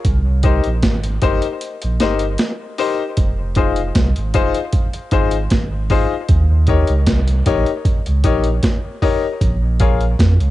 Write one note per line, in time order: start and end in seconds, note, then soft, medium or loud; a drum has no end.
0.05 0.61 C2 loud
0.05 kick loud
0.05 closed hi-hat medium
0.43 0.66 D#4 medium
0.43 0.66 G4 medium
0.43 0.66 A#4 medium
0.43 0.67 C5 medium
0.43 kick loud
0.43 closed hi-hat medium
0.64 0.83 A#1 medium
0.64 closed hi-hat medium
0.83 1.19 G#1 medium
0.83 kick loud
0.83 snare loud
0.83 closed hi-hat medium
1.04 closed hi-hat medium
1.22 1.41 G1 medium
1.22 1.44 D#4 loud
1.22 1.44 G4 medium
1.22 1.45 A#4 medium
1.22 1.45 C5 loud
1.22 kick medium
1.22 closed hi-hat medium
1.42 closed hi-hat medium
1.61 closed hi-hat loud
1.82 2.00 A#1 medium
1.82 closed hi-hat medium
2.00 2.37 G1 medium
2.00 2.22 D#4 medium
2.00 2.23 G4 medium
2.00 2.23 A#4 medium
2.00 2.23 C5 loud
2.00 snare medium
2.00 closed hi-hat medium
2.19 closed hi-hat soft
2.38 snare loud
2.38 closed hi-hat medium
2.78 3.00 D#4 medium
2.78 3.00 G4 medium
2.78 3.01 A#4 medium
2.78 3.01 C5 loud
2.78 open hi-hat medium
3.17 3.92 F1 loud
3.17 kick loud
3.17 closed hi-hat medium
3.55 3.78 D#4 medium
3.55 3.78 F4 medium
3.55 3.79 G#4 medium
3.55 3.79 C5 medium
3.55 kick loud
3.55 closed hi-hat medium
3.76 closed hi-hat medium
3.95 4.14 C2 loud
3.95 kick loud
3.95 snare loud
3.95 closed hi-hat loud
4.16 4.34 G#1 medium
4.16 closed hi-hat medium
4.34 4.53 F1 medium
4.34 4.56 D#4 loud
4.34 4.56 F4 medium
4.34 4.57 G#4 medium
4.34 4.57 C5 loud
4.34 kick loud
4.34 closed hi-hat medium
4.54 closed hi-hat soft
4.73 kick loud
4.73 closed hi-hat loud
4.93 closed hi-hat medium
5.11 5.48 G#1 medium
5.11 5.34 D#4 medium
5.11 5.34 F4 medium
5.11 5.35 G#4 medium
5.11 5.35 C5 loud
5.11 kick medium
5.11 closed hi-hat medium
5.31 closed hi-hat medium
5.50 6.07 G#1 medium
5.50 kick loud
5.50 snare loud
5.50 closed hi-hat loud
5.90 6.12 D#4 medium
5.90 6.12 F4 medium
5.90 6.13 G#4 medium
5.90 6.13 C5 loud
5.90 kick medium
5.90 open hi-hat medium
6.29 6.85 D#2 loud
6.29 kick loud
6.29 closed hi-hat medium
6.67 6.90 D#4 medium
6.67 6.90 G4 medium
6.67 6.91 A#4 medium
6.67 6.91 C#5 loud
6.67 kick medium
6.67 closed hi-hat medium
6.88 7.06 C#2 medium
6.88 closed hi-hat soft
7.07 7.43 C2 loud
7.07 kick loud
7.07 snare loud
7.07 closed hi-hat loud
7.28 closed hi-hat medium
7.46 7.65 A#1 loud
7.46 7.68 D#4 loud
7.46 7.68 G4 medium
7.46 7.69 A#4 medium
7.46 7.69 C#5 loud
7.46 kick medium
7.46 closed hi-hat medium
7.66 closed hi-hat soft
7.85 kick loud
7.85 closed hi-hat medium
8.06 8.24 C#2 medium
8.06 closed hi-hat medium
8.24 8.60 A#1 medium
8.24 8.46 D#4 medium
8.24 8.46 G4 medium
8.24 8.46 A#4 medium
8.24 8.47 C#5 loud
8.24 kick medium
8.24 closed hi-hat medium
8.44 closed hi-hat medium
8.63 kick loud
8.63 snare loud
8.63 closed hi-hat medium
9.02 9.24 D#4 loud
9.02 9.24 G4 medium
9.02 9.24 A#4 medium
9.02 9.25 C#5 loud
9.02 kick medium
9.02 open hi-hat medium
9.41 10.15 A#1 loud
9.41 kick loud
9.41 closed hi-hat medium
9.80 10.02 F4 medium
9.80 10.02 G#4 medium
9.80 10.03 A#4 medium
9.80 10.03 C#5 medium
9.80 kick loud
9.80 closed hi-hat medium
10.01 closed hi-hat soft
10.19 10.38 F2 loud
10.19 kick loud
10.19 snare loud
10.19 closed hi-hat loud
10.40 10.51 C#2 medium
10.40 closed hi-hat medium